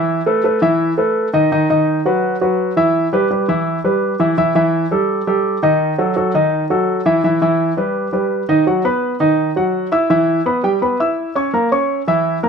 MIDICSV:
0, 0, Header, 1, 2, 480
1, 0, Start_track
1, 0, Tempo, 357782
1, 117, Time_signature, 4, 2, 24, 8
1, 16754, End_track
2, 0, Start_track
2, 0, Title_t, "Grand piano"
2, 0, Program_c, 0, 0
2, 0, Note_on_c, 0, 52, 84
2, 0, Note_on_c, 0, 64, 81
2, 0, Note_on_c, 0, 76, 81
2, 267, Note_off_c, 0, 52, 0
2, 270, Note_off_c, 0, 64, 0
2, 273, Note_off_c, 0, 76, 0
2, 354, Note_on_c, 0, 57, 78
2, 359, Note_on_c, 0, 69, 75
2, 363, Note_on_c, 0, 71, 70
2, 551, Note_off_c, 0, 57, 0
2, 554, Note_off_c, 0, 69, 0
2, 557, Note_off_c, 0, 71, 0
2, 591, Note_on_c, 0, 57, 72
2, 596, Note_on_c, 0, 69, 73
2, 600, Note_on_c, 0, 71, 71
2, 789, Note_off_c, 0, 57, 0
2, 792, Note_off_c, 0, 69, 0
2, 795, Note_off_c, 0, 71, 0
2, 829, Note_on_c, 0, 52, 87
2, 833, Note_on_c, 0, 64, 84
2, 838, Note_on_c, 0, 76, 88
2, 1225, Note_off_c, 0, 52, 0
2, 1227, Note_off_c, 0, 64, 0
2, 1230, Note_off_c, 0, 76, 0
2, 1309, Note_on_c, 0, 57, 69
2, 1314, Note_on_c, 0, 69, 71
2, 1316, Note_on_c, 0, 71, 71
2, 1704, Note_off_c, 0, 57, 0
2, 1707, Note_off_c, 0, 69, 0
2, 1709, Note_off_c, 0, 71, 0
2, 1789, Note_on_c, 0, 51, 86
2, 1793, Note_on_c, 0, 63, 80
2, 1799, Note_on_c, 0, 75, 84
2, 1988, Note_off_c, 0, 51, 0
2, 1990, Note_off_c, 0, 63, 0
2, 1993, Note_off_c, 0, 75, 0
2, 2037, Note_on_c, 0, 51, 82
2, 2040, Note_on_c, 0, 63, 78
2, 2045, Note_on_c, 0, 75, 88
2, 2232, Note_off_c, 0, 51, 0
2, 2234, Note_off_c, 0, 63, 0
2, 2237, Note_off_c, 0, 75, 0
2, 2277, Note_on_c, 0, 51, 82
2, 2281, Note_on_c, 0, 63, 76
2, 2285, Note_on_c, 0, 75, 83
2, 2669, Note_off_c, 0, 51, 0
2, 2671, Note_off_c, 0, 63, 0
2, 2673, Note_off_c, 0, 75, 0
2, 2757, Note_on_c, 0, 54, 66
2, 2762, Note_on_c, 0, 66, 77
2, 2766, Note_on_c, 0, 71, 72
2, 3148, Note_off_c, 0, 54, 0
2, 3152, Note_off_c, 0, 66, 0
2, 3154, Note_off_c, 0, 71, 0
2, 3237, Note_on_c, 0, 54, 67
2, 3240, Note_on_c, 0, 66, 71
2, 3244, Note_on_c, 0, 71, 65
2, 3628, Note_off_c, 0, 54, 0
2, 3630, Note_off_c, 0, 66, 0
2, 3632, Note_off_c, 0, 71, 0
2, 3711, Note_on_c, 0, 52, 81
2, 3717, Note_on_c, 0, 64, 84
2, 3719, Note_on_c, 0, 76, 89
2, 4104, Note_off_c, 0, 52, 0
2, 4108, Note_off_c, 0, 64, 0
2, 4109, Note_off_c, 0, 76, 0
2, 4195, Note_on_c, 0, 55, 74
2, 4198, Note_on_c, 0, 67, 77
2, 4206, Note_on_c, 0, 71, 76
2, 4390, Note_off_c, 0, 55, 0
2, 4392, Note_off_c, 0, 67, 0
2, 4397, Note_off_c, 0, 71, 0
2, 4434, Note_on_c, 0, 55, 70
2, 4438, Note_on_c, 0, 67, 66
2, 4445, Note_on_c, 0, 71, 61
2, 4629, Note_off_c, 0, 55, 0
2, 4631, Note_off_c, 0, 67, 0
2, 4635, Note_off_c, 0, 71, 0
2, 4673, Note_on_c, 0, 52, 73
2, 4678, Note_on_c, 0, 64, 81
2, 4682, Note_on_c, 0, 76, 76
2, 5065, Note_off_c, 0, 52, 0
2, 5068, Note_off_c, 0, 64, 0
2, 5070, Note_off_c, 0, 76, 0
2, 5157, Note_on_c, 0, 55, 74
2, 5160, Note_on_c, 0, 67, 70
2, 5164, Note_on_c, 0, 71, 71
2, 5547, Note_off_c, 0, 55, 0
2, 5549, Note_off_c, 0, 67, 0
2, 5551, Note_off_c, 0, 71, 0
2, 5629, Note_on_c, 0, 52, 84
2, 5634, Note_on_c, 0, 64, 81
2, 5637, Note_on_c, 0, 76, 75
2, 5826, Note_off_c, 0, 52, 0
2, 5829, Note_off_c, 0, 64, 0
2, 5831, Note_off_c, 0, 76, 0
2, 5871, Note_on_c, 0, 52, 80
2, 5872, Note_on_c, 0, 64, 84
2, 5876, Note_on_c, 0, 76, 87
2, 6067, Note_off_c, 0, 52, 0
2, 6067, Note_off_c, 0, 64, 0
2, 6070, Note_off_c, 0, 76, 0
2, 6108, Note_on_c, 0, 52, 88
2, 6113, Note_on_c, 0, 64, 78
2, 6114, Note_on_c, 0, 76, 84
2, 6501, Note_off_c, 0, 52, 0
2, 6504, Note_off_c, 0, 64, 0
2, 6505, Note_off_c, 0, 76, 0
2, 6591, Note_on_c, 0, 55, 73
2, 6597, Note_on_c, 0, 67, 66
2, 6598, Note_on_c, 0, 69, 75
2, 6983, Note_off_c, 0, 55, 0
2, 6987, Note_off_c, 0, 67, 0
2, 6987, Note_off_c, 0, 69, 0
2, 7073, Note_on_c, 0, 55, 69
2, 7076, Note_on_c, 0, 67, 76
2, 7082, Note_on_c, 0, 69, 67
2, 7464, Note_off_c, 0, 55, 0
2, 7466, Note_off_c, 0, 67, 0
2, 7470, Note_off_c, 0, 69, 0
2, 7548, Note_on_c, 0, 51, 89
2, 7553, Note_on_c, 0, 63, 80
2, 7557, Note_on_c, 0, 75, 89
2, 7941, Note_off_c, 0, 51, 0
2, 7944, Note_off_c, 0, 63, 0
2, 7947, Note_off_c, 0, 75, 0
2, 8028, Note_on_c, 0, 54, 78
2, 8033, Note_on_c, 0, 66, 69
2, 8038, Note_on_c, 0, 69, 69
2, 8225, Note_off_c, 0, 54, 0
2, 8227, Note_off_c, 0, 66, 0
2, 8230, Note_off_c, 0, 69, 0
2, 8268, Note_on_c, 0, 54, 69
2, 8271, Note_on_c, 0, 66, 66
2, 8275, Note_on_c, 0, 69, 74
2, 8465, Note_off_c, 0, 54, 0
2, 8467, Note_off_c, 0, 66, 0
2, 8468, Note_off_c, 0, 69, 0
2, 8511, Note_on_c, 0, 51, 76
2, 8516, Note_on_c, 0, 63, 85
2, 8520, Note_on_c, 0, 75, 77
2, 8903, Note_off_c, 0, 51, 0
2, 8906, Note_off_c, 0, 63, 0
2, 8908, Note_off_c, 0, 75, 0
2, 8991, Note_on_c, 0, 54, 68
2, 8994, Note_on_c, 0, 66, 67
2, 9000, Note_on_c, 0, 69, 73
2, 9383, Note_off_c, 0, 54, 0
2, 9385, Note_off_c, 0, 66, 0
2, 9388, Note_off_c, 0, 69, 0
2, 9467, Note_on_c, 0, 52, 91
2, 9471, Note_on_c, 0, 64, 86
2, 9474, Note_on_c, 0, 76, 86
2, 9664, Note_off_c, 0, 52, 0
2, 9666, Note_off_c, 0, 64, 0
2, 9668, Note_off_c, 0, 76, 0
2, 9714, Note_on_c, 0, 52, 84
2, 9716, Note_on_c, 0, 64, 76
2, 9719, Note_on_c, 0, 76, 77
2, 9908, Note_off_c, 0, 52, 0
2, 9909, Note_off_c, 0, 64, 0
2, 9911, Note_off_c, 0, 76, 0
2, 9950, Note_on_c, 0, 52, 83
2, 9954, Note_on_c, 0, 64, 83
2, 9958, Note_on_c, 0, 76, 80
2, 10343, Note_off_c, 0, 52, 0
2, 10345, Note_off_c, 0, 64, 0
2, 10347, Note_off_c, 0, 76, 0
2, 10427, Note_on_c, 0, 55, 68
2, 10431, Note_on_c, 0, 67, 73
2, 10434, Note_on_c, 0, 71, 68
2, 10821, Note_off_c, 0, 55, 0
2, 10823, Note_off_c, 0, 67, 0
2, 10825, Note_off_c, 0, 71, 0
2, 10903, Note_on_c, 0, 55, 64
2, 10906, Note_on_c, 0, 67, 66
2, 10911, Note_on_c, 0, 71, 64
2, 11299, Note_off_c, 0, 55, 0
2, 11301, Note_off_c, 0, 67, 0
2, 11304, Note_off_c, 0, 71, 0
2, 11386, Note_on_c, 0, 51, 74
2, 11388, Note_on_c, 0, 63, 88
2, 11395, Note_on_c, 0, 75, 80
2, 11584, Note_off_c, 0, 51, 0
2, 11585, Note_off_c, 0, 63, 0
2, 11589, Note_off_c, 0, 75, 0
2, 11628, Note_on_c, 0, 54, 71
2, 11634, Note_on_c, 0, 66, 71
2, 11636, Note_on_c, 0, 78, 67
2, 11825, Note_off_c, 0, 54, 0
2, 11829, Note_off_c, 0, 66, 0
2, 11830, Note_off_c, 0, 78, 0
2, 11866, Note_on_c, 0, 59, 67
2, 11870, Note_on_c, 0, 71, 75
2, 11874, Note_on_c, 0, 83, 74
2, 12261, Note_off_c, 0, 59, 0
2, 12264, Note_off_c, 0, 71, 0
2, 12266, Note_off_c, 0, 83, 0
2, 12343, Note_on_c, 0, 51, 75
2, 12345, Note_on_c, 0, 63, 86
2, 12352, Note_on_c, 0, 75, 77
2, 12740, Note_off_c, 0, 51, 0
2, 12741, Note_off_c, 0, 63, 0
2, 12745, Note_off_c, 0, 75, 0
2, 12828, Note_on_c, 0, 54, 66
2, 12834, Note_on_c, 0, 66, 68
2, 12838, Note_on_c, 0, 78, 76
2, 13223, Note_off_c, 0, 54, 0
2, 13227, Note_off_c, 0, 66, 0
2, 13229, Note_off_c, 0, 78, 0
2, 13306, Note_on_c, 0, 64, 79
2, 13309, Note_on_c, 0, 76, 80
2, 13315, Note_on_c, 0, 88, 71
2, 13505, Note_off_c, 0, 64, 0
2, 13507, Note_off_c, 0, 76, 0
2, 13510, Note_off_c, 0, 88, 0
2, 13549, Note_on_c, 0, 52, 85
2, 13551, Note_on_c, 0, 64, 85
2, 13557, Note_on_c, 0, 76, 85
2, 13944, Note_off_c, 0, 52, 0
2, 13946, Note_off_c, 0, 64, 0
2, 13949, Note_off_c, 0, 76, 0
2, 14029, Note_on_c, 0, 59, 73
2, 14031, Note_on_c, 0, 71, 67
2, 14036, Note_on_c, 0, 83, 67
2, 14227, Note_off_c, 0, 59, 0
2, 14229, Note_off_c, 0, 71, 0
2, 14232, Note_off_c, 0, 83, 0
2, 14266, Note_on_c, 0, 55, 70
2, 14272, Note_on_c, 0, 67, 80
2, 14276, Note_on_c, 0, 79, 78
2, 14466, Note_off_c, 0, 55, 0
2, 14469, Note_off_c, 0, 67, 0
2, 14472, Note_off_c, 0, 79, 0
2, 14511, Note_on_c, 0, 59, 65
2, 14518, Note_on_c, 0, 83, 67
2, 14519, Note_on_c, 0, 71, 67
2, 14709, Note_off_c, 0, 59, 0
2, 14713, Note_off_c, 0, 71, 0
2, 14713, Note_off_c, 0, 83, 0
2, 14755, Note_on_c, 0, 64, 70
2, 14758, Note_on_c, 0, 76, 66
2, 14763, Note_on_c, 0, 88, 66
2, 15148, Note_off_c, 0, 64, 0
2, 15150, Note_off_c, 0, 76, 0
2, 15153, Note_off_c, 0, 88, 0
2, 15233, Note_on_c, 0, 61, 79
2, 15239, Note_on_c, 0, 73, 74
2, 15243, Note_on_c, 0, 85, 77
2, 15431, Note_off_c, 0, 61, 0
2, 15434, Note_off_c, 0, 73, 0
2, 15436, Note_off_c, 0, 85, 0
2, 15475, Note_on_c, 0, 58, 73
2, 15477, Note_on_c, 0, 70, 73
2, 15483, Note_on_c, 0, 82, 70
2, 15672, Note_off_c, 0, 58, 0
2, 15673, Note_off_c, 0, 70, 0
2, 15676, Note_off_c, 0, 82, 0
2, 15720, Note_on_c, 0, 61, 75
2, 15724, Note_on_c, 0, 73, 72
2, 15726, Note_on_c, 0, 85, 75
2, 16112, Note_off_c, 0, 61, 0
2, 16114, Note_off_c, 0, 73, 0
2, 16116, Note_off_c, 0, 85, 0
2, 16200, Note_on_c, 0, 52, 81
2, 16205, Note_on_c, 0, 64, 83
2, 16207, Note_on_c, 0, 76, 84
2, 16592, Note_off_c, 0, 52, 0
2, 16595, Note_off_c, 0, 64, 0
2, 16596, Note_off_c, 0, 76, 0
2, 16678, Note_on_c, 0, 58, 72
2, 16683, Note_on_c, 0, 70, 69
2, 16687, Note_on_c, 0, 82, 67
2, 16754, Note_off_c, 0, 58, 0
2, 16754, Note_off_c, 0, 70, 0
2, 16754, Note_off_c, 0, 82, 0
2, 16754, End_track
0, 0, End_of_file